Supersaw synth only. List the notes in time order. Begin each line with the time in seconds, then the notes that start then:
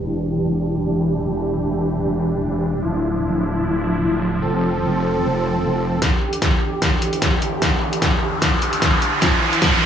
Already playing: E3 D4 G4
2.82 F3 E4
4.42 C4 A4
6.02 E2 D3 G4
9.22 F2 E3